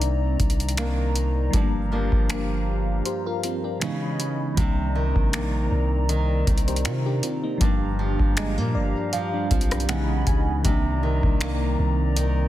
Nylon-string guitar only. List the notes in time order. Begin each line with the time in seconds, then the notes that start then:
Already playing: C3 D#3 A#3 D4
0.78 D#3 A#3 D4
1.54 G2
1.92 F3 A#3 D4
2.30 A#3
3.82 C#3
4.57 C3
4.95 D#3
5.33 A#3
6.09 D#3
6.47 D#3
7.61 G2
7.99 F3
8.37 G#3
8.58 A#3
9.13 F3
9.51 F3
9.89 C#3
10.65 C3
11.03 D#3
11.41 A#3
12.17 D#3